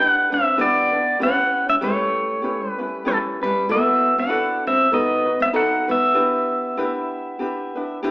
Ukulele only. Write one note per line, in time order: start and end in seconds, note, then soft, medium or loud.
0.00 0.30 D4 medium
0.00 0.30 E4 medium
0.00 0.30 G4 medium
0.00 0.28 B4 medium
0.29 0.56 D4 soft
0.29 0.57 E4 soft
0.29 0.57 B4 soft
0.57 0.93 D4 medium
0.57 0.92 E4 medium
0.57 0.92 G4 medium
0.57 0.91 B4 medium
0.92 1.19 D4 soft
0.92 1.19 E4 soft
0.92 1.20 B4 soft
1.19 1.80 C#4 medium
1.19 1.82 E4 medium
1.19 1.80 G4 medium
1.19 1.83 B4 medium
1.81 2.41 C#4 medium
1.81 2.44 E4 medium
1.81 2.41 G4 medium
1.81 2.44 B4 medium
2.42 2.78 C#4 medium
2.42 2.78 E4 medium
2.42 2.78 G4 medium
2.42 2.77 B4 medium
2.78 3.05 C#4 soft
2.78 3.05 E4 medium
2.78 3.05 B4 medium
3.05 3.41 C#4 medium
3.05 3.41 E4 loud
3.05 3.40 G4 medium
3.05 3.40 B4 medium
3.41 3.69 C#4 soft
3.41 3.68 E4 soft
3.41 3.68 B4 medium
3.69 4.27 E4 medium
3.69 4.28 F#4 medium
3.69 4.27 A4 medium
3.69 4.29 B4 medium
4.28 4.91 E4 medium
4.28 4.92 F#4 medium
4.28 4.90 A4 medium
4.28 4.93 B4 medium
4.91 5.26 D#4 medium
4.91 5.25 F#4 medium
4.91 5.25 A4 medium
4.91 5.24 B4 medium
5.25 5.52 D#4 soft
5.25 5.52 F#4 soft
5.25 5.53 B4 medium
5.53 5.88 D#4 medium
5.53 5.88 F#4 medium
5.53 5.87 A4 medium
5.53 5.86 B4 medium
5.88 6.15 F#4 soft
5.88 6.14 B4 medium
6.14 6.77 D4 medium
6.14 6.77 E4 medium
6.14 6.77 G4 medium
6.14 6.78 B4 medium
6.77 7.39 D4 medium
6.77 7.40 E4 medium
6.77 7.39 G4 medium
6.77 7.41 B4 medium
7.39 7.75 D4 medium
7.39 7.75 E4 medium
7.39 7.74 G4 medium
7.39 7.74 B4 medium
7.75 8.02 D4 medium
7.75 8.03 E4 medium
7.75 8.02 B4 medium
8.03 8.11 D4 medium
8.03 8.11 E4 loud
8.03 8.11 G4 medium
8.03 8.11 B4 loud